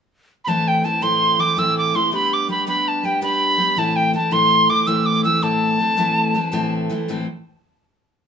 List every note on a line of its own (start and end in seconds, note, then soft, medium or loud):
0.45 0.84 A2 medium
0.45 0.82 E3 medium
0.45 0.84 A3 medium
0.45 0.83 C4 medium
0.45 0.84 E4 medium
0.45 0.69 A5 medium
0.45 0.50 B5 medium
0.68 0.86 G5 medium
0.84 1.01 E3 soft
0.84 1.01 A3 soft
0.84 1.01 C4 soft
0.84 1.02 E4 medium
0.84 1.04 A5 medium
1.01 1.39 A2 medium
1.01 1.37 E3 medium
1.01 1.39 A3 medium
1.01 1.38 C4 medium
1.01 1.39 E4 medium
1.01 1.41 C6 medium
1.38 1.56 E3 soft
1.38 1.57 A3 medium
1.38 1.56 C4 soft
1.38 1.57 E4 soft
1.38 1.60 D6 medium
1.57 1.94 A2 medium
1.57 1.93 E3 medium
1.57 1.94 A3 medium
1.57 1.93 C4 medium
1.57 1.95 E4 medium
1.57 1.77 E6 medium
1.78 1.97 D6 medium
1.94 2.11 E3 soft
1.94 2.12 A3 soft
1.94 2.12 C4 soft
1.94 2.13 E4 medium
1.94 2.13 C6 medium
2.12 2.47 G3 medium
2.12 2.48 B3 medium
2.12 2.49 D4 medium
2.12 2.49 G4 medium
2.12 2.35 B5 medium
2.33 2.50 D6 medium
2.49 2.65 G3 soft
2.49 2.66 B3 soft
2.49 2.66 D4 soft
2.49 2.67 G4 medium
2.49 2.67 B5 medium
2.67 3.02 G3 medium
2.67 3.03 B3 medium
2.67 3.04 D4 medium
2.67 3.04 G4 medium
2.67 2.89 B5 medium
2.88 3.01 A5 medium
3.01 3.20 G3 soft
3.01 3.21 B3 soft
3.01 3.06 A5 soft
3.05 3.21 D4 soft
3.05 3.21 G4 soft
3.05 3.22 G5 medium
3.21 3.57 G3 medium
3.21 3.58 B3 medium
3.21 3.58 D4 medium
3.21 3.58 G4 medium
3.21 3.80 B5 medium
3.58 3.76 G3 medium
3.58 3.77 B3 medium
3.58 3.77 D4 soft
3.58 3.77 G4 medium
3.76 4.14 A2 medium
3.76 4.13 E3 medium
3.76 4.14 A3 medium
3.76 4.14 C4 medium
3.76 4.15 E4 medium
3.76 3.98 A5 medium
3.96 4.14 G5 medium
4.13 4.30 E3 medium
4.13 4.31 A3 soft
4.13 4.31 C4 medium
4.13 4.31 E4 soft
4.13 4.34 A5 medium
4.31 4.69 A2 medium
4.31 4.68 E3 medium
4.31 4.69 A3 medium
4.31 4.70 C4 medium
4.31 4.70 E4 medium
4.31 4.71 C6 medium
4.69 4.86 E3 medium
4.69 4.86 A3 soft
4.69 4.87 C4 medium
4.69 4.87 E4 medium
4.69 4.89 D6 medium
4.87 5.24 A2 medium
4.87 5.24 E3 medium
4.87 5.25 A3 medium
4.87 5.25 C4 medium
4.87 5.26 E4 medium
4.87 5.07 E6 medium
5.06 5.24 D6 medium
5.24 5.41 E3 medium
5.24 5.41 A3 medium
5.24 5.42 C4 medium
5.24 5.42 E4 soft
5.24 5.44 E6 medium
5.42 5.80 A2 medium
5.42 5.79 E3 medium
5.42 5.80 A3 medium
5.42 5.80 C4 medium
5.42 5.81 E4 medium
5.42 6.73 A5 medium
5.79 5.96 E3 soft
5.79 5.97 A3 soft
5.79 5.97 C4 soft
5.79 5.97 E4 soft
5.97 6.35 A2 medium
5.97 6.34 E3 medium
5.97 6.35 A3 medium
5.97 6.35 C4 medium
5.97 6.36 E4 medium
6.35 6.51 E3 medium
6.35 6.52 A3 medium
6.35 6.52 C4 medium
6.35 6.52 E4 soft
6.52 6.90 A2 medium
6.52 6.89 E3 medium
6.52 6.90 A3 medium
6.52 6.91 C4 medium
6.52 6.91 E4 medium
6.90 7.08 E3 medium
6.90 7.09 A3 medium
6.90 7.09 C4 medium
6.90 7.09 E4 medium
7.08 7.24 A2 medium
7.08 7.25 E3 medium
7.08 7.25 A3 medium
7.08 7.25 C4 medium
7.08 7.26 E4 medium